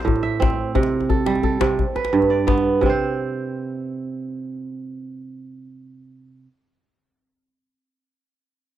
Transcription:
Already playing: D4 A4 C5
0.05 A2, djembe bass
0.16 djembe tone
0.23 E5
0.40 C4, djembe slap, djembe bass
0.50 djembe tone
0.75 C3, djembe tone, djembe bass
0.83 djembe slap
0.92 djembe slap
1.00 djembe tone
1.09 A4, djembe bass
1.26 G3, djembe slap
1.36 djembe slap, djembe tone
1.43 A4, djembe bass
1.53 djembe slap
1.61 C3, djembe slap, djembe tone
1.79 djembe slap, djembe bass
1.96 B4, djembe slap, djembe tone
2.05 djembe slap
2.13 G2
2.22 djembe tone
2.30 D5
2.39 djembe slap
2.47 B3, djembe slap, djembe bass
2.58 djembe tone
2.81 C3, djembe bass
2.86 C4 C5

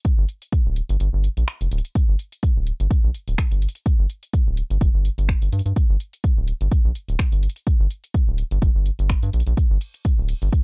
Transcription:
0.05 kick, closed hi-hat
0.18 G1
0.29 open hi-hat
0.42 closed hi-hat
0.52 kick, closed hi-hat
0.66 D1
0.76 open hi-hat
0.89 G1, closed hi-hat
1.00 G1, closed hi-hat
1.13 G1
1.24 open hi-hat
1.37 A#1, closed hi-hat
1.48 finger snap
1.61 F1, closed hi-hat
1.72 D1, open hi-hat
1.78 closed hi-hat
1.85 closed hi-hat
1.95 kick, closed hi-hat
2.08 G1
2.19 open hi-hat
2.32 closed hi-hat
2.43 kick, closed hi-hat
2.56 D1
2.67 open hi-hat
2.80 G1, closed hi-hat
2.91 kick, closed hi-hat
3.04 A#1
3.14 open hi-hat
3.28 D1, closed hi-hat
3.38 finger snap, kick
3.51 G1, closed hi-hat
3.62 open hi-hat
3.69 closed hi-hat
3.75 closed hi-hat
3.86 kick, closed hi-hat
3.99 G1
4.10 open hi-hat
4.23 closed hi-hat
4.33 kick, closed hi-hat
4.47 D1
4.57 open hi-hat
4.70 G1, closed hi-hat
4.81 G1, kick, closed hi-hat
4.94 G1
5.05 open hi-hat
5.18 G1, closed hi-hat
5.29 finger snap, kick
5.42 G1, closed hi-hat
5.52 G2, open hi-hat
5.59 closed hi-hat
5.66 G2, closed hi-hat
5.76 kick, closed hi-hat
5.89 G1
6.00 open hi-hat
6.13 closed hi-hat
6.24 kick, closed hi-hat
6.37 D1
6.48 open hi-hat
6.61 G1, closed hi-hat
6.72 kick, closed hi-hat
6.85 A#1
6.95 open hi-hat
7.08 D1, closed hi-hat
7.19 finger snap, kick
7.32 G1, closed hi-hat
7.43 open hi-hat
7.50 closed hi-hat
7.56 closed hi-hat
7.67 kick, closed hi-hat
7.80 G1
7.91 open hi-hat
8.04 closed hi-hat
8.14 kick, closed hi-hat
8.27 D1
8.38 open hi-hat
8.51 G1, closed hi-hat
8.62 G1, kick, closed hi-hat
8.75 G1
8.86 open hi-hat
8.99 G1, closed hi-hat
9.10 finger snap, kick
9.23 G2, closed hi-hat
9.33 A#1, open hi-hat
9.40 closed hi-hat
9.47 A#1, closed hi-hat
9.57 kick, closed hi-hat
9.70 G1
9.81 open hi-hat, ride
9.94 closed hi-hat
10.05 kick, closed hi-hat
10.18 D1
10.29 open hi-hat, ride
10.42 G1, closed hi-hat
10.53 kick, closed hi-hat

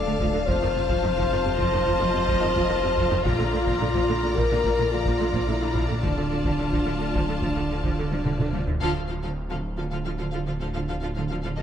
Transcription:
Already playing: D1 A4 D5 F5 A5
0.05 D2 D3
0.20 D2 F3, taiko
0.33 D2 D3
0.47 F1 F2 F3 F4 C5 A5, taiko
0.62 F2 D#3
0.75 F2 C3
0.90 F2 F3, taiko
1.03 F2 D#3
1.16 F2 F3, taiko
1.31 F2 D#3
1.45 F2 C3
1.58 F2 F3 D#5, taiko
1.73 F2 D#3
1.86 F2 F3, taiko
1.99 F2 D#3
2.13 F2 C3
2.28 F2 F3, taiko
2.41 F2 D#3
2.56 F2 F3, taiko
2.69 F2 D#3
2.83 F2 C3
2.97 F2 F3, taiko
3.10 F2 D#3
3.24 A#1 A#2 F3 F4 D5 A#5, taiko
3.38 A#2 D3
3.52 A#2 D3
3.66 A#2 F3, taiko
3.81 A#2 D3
3.94 A#2 F3, taiko
4.09 A#2 D3
4.23 A#2 D3
4.36 A#2 F3 A#4, taiko
4.51 A#2 D3
4.64 A#2 F3, taiko
4.79 A#2 D3
4.92 A#2 D3 F4
5.05 A#2 F3, taiko
5.20 A#2 D3
5.33 A#2 F3, taiko
5.47 A#2 D3 E4
5.61 A#2 D3
5.74 A#2 F3, taiko
5.88 A#2 D3
6.02 D1 D3 F3 D4 F4 A5, taiko
6.16 D3
6.30 D3
6.44 D3 F3, taiko
6.58 D3
6.72 D3 F3, taiko
6.86 D3
7.00 D3
7.14 D3 F3, taiko
7.29 D3
7.42 D3 F3, taiko
7.56 D3
7.71 D3
7.84 D3 F3, taiko
7.98 D3
8.11 D3 F3, taiko high
8.25 D3, taiko mid
8.39 D3, taiko mid
8.53 D3 F3, taiko high
8.67 D3, taiko low
8.80 D1 D3 F3 F4 A4 F5, taiko
8.95 D3 F3 F4 A4 F5
9.08 D3 F3 F4 A4 F5
9.23 D3 F3 F4 A4 F5
9.50 D3 F3 F4 A4 F5
9.78 D3 F3 F4 A4 F5
9.91 D3 F3 F4 A4 F5
10.05 D3 F3 F4 A4 F5
10.18 D3 F3 F4 A4 F5
10.32 D3 F3 F4 A4 F5
10.46 D3 F3 F4 A4 F5
10.60 D3 F3 F4 A4 F5
10.74 D3 F3 F4 A4 F5
10.88 D3 F3 F4 A4 F5
11.02 D3 F3 F4 A4 F5
11.16 D3 F3 F4 A4 F5
11.30 D3 F3 F4 A4 F5
11.43 D3 F3 F4 A4 F5
11.56 F1 F2 F3 F4 A4 D#5

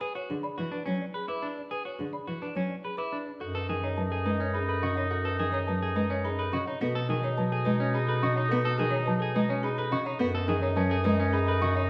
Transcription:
0.01 G#4 B4
0.15 F#4 C#5
0.30 D3 G#4
0.43 D5 B5
0.58 E3 F#4
0.72 D4 B4
0.86 F#3 C#4 C#5
1.02 D5
1.14 G#4 B4
1.28 E4 B4 D6
1.42 D4
1.58 D5
1.71 G#4 B4
1.85 F#4 C#5
1.99 D3 G#4
2.13 D5 B5
2.27 E3 F#4
2.42 D4 B4
2.55 F#3 C#4 C#5
2.70 D5
2.84 G#4 B4
2.97 E4 B4 D6
3.12 D4
3.26 D5
3.40 F#2 D#4 F#4 A4
3.54 A4 B4
3.69 D#3 G#4
3.83 D#4 C#5
3.96 F#3 B4 A5
4.11 G#4 A4
4.25 G#3 D#4 B4
4.40 C#4 C#5
4.54 D#4 G#4 B5
4.68 A4 B4
4.82 C#3 F#4 D#5 C#6
4.97 D#4 C#5
5.11 F#4 A4
5.24 A4 B4
5.39 D#3 G#4
5.52 D#4 C#5
5.67 F#3 B4 A5
5.82 G#4 A4
5.96 G#3 D#4 B4
6.10 C#4 C#5
6.24 D#4 G#4 B5
6.39 A4 B4
6.52 C#3 F#4 D#5 C#6
6.67 D#4 C#5
6.80 B2 B3 D#4 F#4 A4
6.95 A4 B4
7.09 D#3 G#4
7.23 D#4 C#5
7.37 F#3 B4 A5
7.52 G#4 A4
7.65 G#3 D#4 B4
7.80 C#4 C#5
7.94 D#4 G#4 B5
8.07 A4 B4
8.22 C#3 F#4 D#5 C#6
8.35 D#4 C#5
8.49 B3 F#4 A4
8.63 A4 B4
8.78 D#3 G#4
8.91 D#4 C#5
9.06 F#3 B4 A5
9.20 G#4 A4
9.35 G#3 D#4 B4
9.49 C#4 C#5
9.63 D#4 G#4 B5
9.78 A4 B4
9.91 C#3 F#4 D#5 C#6
10.05 D#4 C#5
10.19 F#2 B3 D#4 F#4 A4
10.34 A4 B4
10.48 D#3 G#4
10.62 D#4 C#5
10.76 F#3 C#4 B4 A5
10.90 G#4 A4
11.04 G#3 D#4 B4
11.19 C#4 C#5
11.33 D#4 G#4 B5
11.47 A4 B4
11.61 C#3 F#4 D#5 C#6
11.75 D#4 C#5

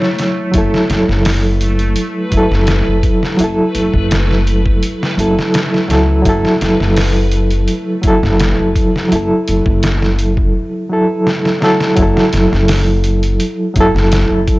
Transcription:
Already playing: F#3 A3 E4 A4 C#5
0.02 snare
0.19 snare, closed hi-hat
0.51 F#1 F#3 E4 B4, kick, closed hi-hat
0.58 A4
0.74 snare
0.90 F#1, snare, closed hi-hat
1.09 F#1, snare
1.25 snare, open hi-hat
1.61 closed hi-hat
1.79 closed hi-hat
1.96 closed hi-hat
2.30 F#1 F#3 E4, kick, closed hi-hat
2.37 A4
2.51 F#1, snare
2.67 snare, closed hi-hat
2.87 F#1
3.03 kick, closed hi-hat
3.23 snare
3.37 F#1 F#3 E4, closed hi-hat
3.44 A4
3.75 F#1, closed hi-hat
3.94 F#1, kick
4.11 snare, closed hi-hat
4.31 snare
4.47 closed hi-hat
4.66 kick
4.83 closed hi-hat
5.03 snare
5.17 F#1 F#3 E4 A4, closed hi-hat
5.39 snare
5.54 snare, closed hi-hat
5.74 snare
5.88 C#2 F#3 E4 A4, snare, closed hi-hat
6.22 F#1 F#3 E4, kick, closed hi-hat
6.29 A4
6.45 snare
6.61 F#1, snare, closed hi-hat
6.80 F#1, snare
6.97 snare, open hi-hat
7.32 closed hi-hat
7.51 closed hi-hat
7.68 closed hi-hat
8.02 F#1 F#3 E4, kick, closed hi-hat
8.08 A4
8.23 F#1, snare
8.40 snare, closed hi-hat
8.59 F#1
8.76 kick, closed hi-hat
8.96 snare
9.09 F#1 F#3 E4, closed hi-hat
9.15 A4
9.48 F#1, closed hi-hat
9.66 F#1, kick
9.83 snare, closed hi-hat
10.02 snare
10.19 closed hi-hat
10.37 kick
10.90 F#3 E4 A4
11.27 snare
11.45 snare
11.61 F#3 E4 A4, snare
11.80 snare
11.96 F#1 F#3 E4, kick, closed hi-hat
12.02 A4
12.17 snare
12.33 F#1, snare, closed hi-hat
12.52 F#1, snare
12.68 snare, open hi-hat
13.04 closed hi-hat
13.23 closed hi-hat
13.40 closed hi-hat
13.74 F#1 F#3 E4, kick, closed hi-hat
13.81 A4
13.94 F#1, snare
14.12 snare, closed hi-hat
14.31 F#1
14.48 kick, closed hi-hat

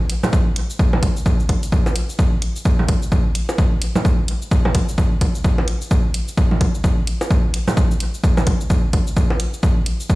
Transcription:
0.10 closed hi-hat
0.23 low bongo, low conga, shaker
0.33 kick, shaker
0.56 closed hi-hat
0.70 shaker
0.79 kick, shaker
0.93 low bongo, low conga
1.03 kick, closed hi-hat
1.17 shaker
1.26 kick, shaker
1.40 shaker
1.49 kick, closed hi-hat
1.63 closed hi-hat, shaker
1.72 kick, shaker
1.86 low bongo, shaker
1.96 closed hi-hat
2.09 shaker
2.19 kick, shaker
2.42 closed hi-hat
2.56 shaker
2.65 kick, shaker
2.79 low conga
2.89 kick, closed hi-hat
3.02 shaker
3.12 kick, shaker
3.35 closed hi-hat
3.49 low bongo, shaker
3.58 kick, shaker
3.82 closed hi-hat
3.95 low bongo, low conga, shaker
4.05 kick, shaker
4.28 closed hi-hat
4.42 shaker
4.51 kick, shaker
4.65 low bongo, low conga
4.75 kick, closed hi-hat
4.89 shaker
4.98 kick, shaker
5.21 kick, closed hi-hat
5.35 shaker
5.44 kick, shaker
5.58 low bongo
5.68 closed hi-hat
5.82 shaker
5.91 kick, shaker
6.14 closed hi-hat
6.28 shaker
6.37 kick, shaker
6.51 low conga
6.61 kick, closed hi-hat
6.75 shaker
6.84 kick, shaker
7.07 closed hi-hat
7.21 low bongo, shaker
7.31 kick, shaker
7.54 closed hi-hat
7.68 low bongo, low conga, shaker
7.77 kick, shaker
7.91 shaker
8.00 closed hi-hat
8.14 shaker
8.24 kick, shaker
8.37 low bongo, low conga, shaker
8.47 kick, closed hi-hat
8.61 shaker
8.70 kick, shaker
8.93 kick, closed hi-hat
9.07 shaker
9.17 kick, shaker
9.30 low bongo
9.40 closed hi-hat
9.54 shaker
9.63 kick, shaker
9.86 closed hi-hat
10.00 shaker
10.10 kick, shaker

